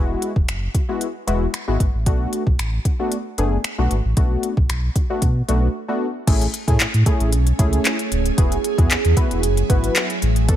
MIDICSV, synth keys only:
0, 0, Header, 1, 2, 480
1, 0, Start_track
1, 0, Tempo, 526316
1, 1882, Time_signature, 4, 2, 24, 8
1, 9634, End_track
2, 0, Start_track
2, 0, Title_t, "Synth keys"
2, 0, Program_c, 0, 88
2, 0, Note_on_c, 0, 56, 82
2, 0, Note_on_c, 0, 59, 76
2, 0, Note_on_c, 0, 64, 75
2, 0, Note_on_c, 0, 66, 91
2, 296, Note_off_c, 0, 56, 0
2, 297, Note_off_c, 0, 59, 0
2, 297, Note_off_c, 0, 64, 0
2, 298, Note_off_c, 0, 66, 0
2, 680, Note_on_c, 0, 64, 84
2, 684, Note_on_c, 0, 66, 95
2, 740, Note_off_c, 0, 64, 0
2, 742, Note_off_c, 0, 66, 0
2, 809, Note_on_c, 0, 56, 78
2, 810, Note_on_c, 0, 59, 73
2, 811, Note_on_c, 0, 64, 73
2, 813, Note_on_c, 0, 66, 89
2, 969, Note_off_c, 0, 56, 0
2, 970, Note_off_c, 0, 59, 0
2, 971, Note_off_c, 0, 64, 0
2, 971, Note_off_c, 0, 66, 0
2, 1159, Note_on_c, 0, 56, 86
2, 1161, Note_on_c, 0, 59, 80
2, 1163, Note_on_c, 0, 64, 78
2, 1165, Note_on_c, 0, 66, 90
2, 1330, Note_off_c, 0, 56, 0
2, 1331, Note_off_c, 0, 59, 0
2, 1332, Note_off_c, 0, 64, 0
2, 1333, Note_off_c, 0, 66, 0
2, 1529, Note_on_c, 0, 56, 84
2, 1530, Note_on_c, 0, 59, 77
2, 1532, Note_on_c, 0, 64, 80
2, 1533, Note_on_c, 0, 66, 90
2, 1689, Note_off_c, 0, 56, 0
2, 1690, Note_off_c, 0, 59, 0
2, 1691, Note_off_c, 0, 64, 0
2, 1691, Note_off_c, 0, 66, 0
2, 1882, Note_on_c, 0, 57, 84
2, 1884, Note_on_c, 0, 59, 74
2, 1885, Note_on_c, 0, 62, 78
2, 1887, Note_on_c, 0, 66, 90
2, 2217, Note_off_c, 0, 57, 0
2, 2218, Note_off_c, 0, 59, 0
2, 2218, Note_off_c, 0, 62, 0
2, 2219, Note_off_c, 0, 66, 0
2, 2603, Note_on_c, 0, 62, 83
2, 2607, Note_on_c, 0, 66, 89
2, 2661, Note_off_c, 0, 62, 0
2, 2663, Note_off_c, 0, 66, 0
2, 2731, Note_on_c, 0, 57, 79
2, 2733, Note_on_c, 0, 59, 71
2, 2733, Note_on_c, 0, 62, 77
2, 2736, Note_on_c, 0, 66, 90
2, 2890, Note_off_c, 0, 57, 0
2, 2891, Note_off_c, 0, 59, 0
2, 2892, Note_off_c, 0, 62, 0
2, 2893, Note_off_c, 0, 66, 0
2, 3084, Note_on_c, 0, 57, 86
2, 3086, Note_on_c, 0, 59, 77
2, 3087, Note_on_c, 0, 62, 77
2, 3088, Note_on_c, 0, 68, 97
2, 3252, Note_off_c, 0, 57, 0
2, 3253, Note_off_c, 0, 59, 0
2, 3254, Note_off_c, 0, 62, 0
2, 3254, Note_off_c, 0, 68, 0
2, 3451, Note_on_c, 0, 57, 84
2, 3453, Note_on_c, 0, 59, 78
2, 3454, Note_on_c, 0, 62, 76
2, 3456, Note_on_c, 0, 66, 98
2, 3610, Note_off_c, 0, 57, 0
2, 3611, Note_off_c, 0, 59, 0
2, 3612, Note_off_c, 0, 62, 0
2, 3613, Note_off_c, 0, 66, 0
2, 3802, Note_on_c, 0, 57, 79
2, 3804, Note_on_c, 0, 59, 74
2, 3805, Note_on_c, 0, 62, 73
2, 3807, Note_on_c, 0, 66, 93
2, 4137, Note_off_c, 0, 57, 0
2, 4138, Note_off_c, 0, 59, 0
2, 4139, Note_off_c, 0, 62, 0
2, 4139, Note_off_c, 0, 66, 0
2, 4522, Note_on_c, 0, 62, 81
2, 4527, Note_on_c, 0, 66, 94
2, 4581, Note_off_c, 0, 62, 0
2, 4583, Note_off_c, 0, 66, 0
2, 4650, Note_on_c, 0, 57, 81
2, 4651, Note_on_c, 0, 59, 71
2, 4652, Note_on_c, 0, 62, 73
2, 4654, Note_on_c, 0, 66, 91
2, 4810, Note_off_c, 0, 57, 0
2, 4810, Note_off_c, 0, 59, 0
2, 4811, Note_off_c, 0, 62, 0
2, 4812, Note_off_c, 0, 66, 0
2, 5001, Note_on_c, 0, 57, 88
2, 5003, Note_on_c, 0, 59, 77
2, 5004, Note_on_c, 0, 62, 78
2, 5006, Note_on_c, 0, 66, 93
2, 5171, Note_off_c, 0, 57, 0
2, 5172, Note_off_c, 0, 59, 0
2, 5173, Note_off_c, 0, 62, 0
2, 5173, Note_off_c, 0, 66, 0
2, 5366, Note_on_c, 0, 57, 84
2, 5368, Note_on_c, 0, 59, 74
2, 5369, Note_on_c, 0, 62, 74
2, 5371, Note_on_c, 0, 66, 92
2, 5528, Note_off_c, 0, 57, 0
2, 5529, Note_off_c, 0, 59, 0
2, 5530, Note_off_c, 0, 62, 0
2, 5531, Note_off_c, 0, 66, 0
2, 5720, Note_on_c, 0, 57, 90
2, 5722, Note_on_c, 0, 61, 77
2, 5723, Note_on_c, 0, 64, 78
2, 5724, Note_on_c, 0, 68, 95
2, 5890, Note_off_c, 0, 57, 0
2, 5891, Note_off_c, 0, 61, 0
2, 5892, Note_off_c, 0, 64, 0
2, 5892, Note_off_c, 0, 68, 0
2, 6087, Note_on_c, 0, 57, 82
2, 6089, Note_on_c, 0, 61, 75
2, 6090, Note_on_c, 0, 64, 77
2, 6091, Note_on_c, 0, 68, 94
2, 6249, Note_off_c, 0, 57, 0
2, 6249, Note_off_c, 0, 61, 0
2, 6250, Note_off_c, 0, 64, 0
2, 6250, Note_off_c, 0, 68, 0
2, 6440, Note_on_c, 0, 57, 91
2, 6441, Note_on_c, 0, 61, 80
2, 6444, Note_on_c, 0, 64, 77
2, 6445, Note_on_c, 0, 68, 100
2, 6662, Note_off_c, 0, 57, 0
2, 6663, Note_off_c, 0, 61, 0
2, 6664, Note_off_c, 0, 64, 0
2, 6664, Note_off_c, 0, 68, 0
2, 6920, Note_on_c, 0, 57, 90
2, 6922, Note_on_c, 0, 61, 84
2, 6923, Note_on_c, 0, 64, 78
2, 6925, Note_on_c, 0, 68, 100
2, 7256, Note_off_c, 0, 57, 0
2, 7257, Note_off_c, 0, 61, 0
2, 7257, Note_off_c, 0, 64, 0
2, 7258, Note_off_c, 0, 68, 0
2, 7640, Note_on_c, 0, 59, 86
2, 7641, Note_on_c, 0, 64, 81
2, 7643, Note_on_c, 0, 66, 77
2, 7644, Note_on_c, 0, 68, 99
2, 7810, Note_off_c, 0, 59, 0
2, 7811, Note_off_c, 0, 64, 0
2, 7812, Note_off_c, 0, 66, 0
2, 7812, Note_off_c, 0, 68, 0
2, 8007, Note_on_c, 0, 59, 83
2, 8007, Note_on_c, 0, 64, 79
2, 8010, Note_on_c, 0, 66, 80
2, 8011, Note_on_c, 0, 68, 97
2, 8168, Note_off_c, 0, 59, 0
2, 8169, Note_off_c, 0, 64, 0
2, 8170, Note_off_c, 0, 66, 0
2, 8170, Note_off_c, 0, 68, 0
2, 8360, Note_on_c, 0, 59, 89
2, 8361, Note_on_c, 0, 64, 82
2, 8362, Note_on_c, 0, 66, 82
2, 8365, Note_on_c, 0, 71, 94
2, 8582, Note_off_c, 0, 59, 0
2, 8583, Note_off_c, 0, 64, 0
2, 8583, Note_off_c, 0, 66, 0
2, 8584, Note_off_c, 0, 71, 0
2, 8841, Note_on_c, 0, 59, 89
2, 8843, Note_on_c, 0, 64, 79
2, 8843, Note_on_c, 0, 66, 84
2, 8846, Note_on_c, 0, 71, 96
2, 9176, Note_off_c, 0, 59, 0
2, 9177, Note_off_c, 0, 64, 0
2, 9178, Note_off_c, 0, 66, 0
2, 9179, Note_off_c, 0, 71, 0
2, 9560, Note_on_c, 0, 59, 90
2, 9562, Note_on_c, 0, 62, 78
2, 9564, Note_on_c, 0, 66, 80
2, 9565, Note_on_c, 0, 69, 102
2, 9634, Note_off_c, 0, 59, 0
2, 9634, Note_off_c, 0, 62, 0
2, 9634, Note_off_c, 0, 66, 0
2, 9634, Note_off_c, 0, 69, 0
2, 9634, End_track
0, 0, End_of_file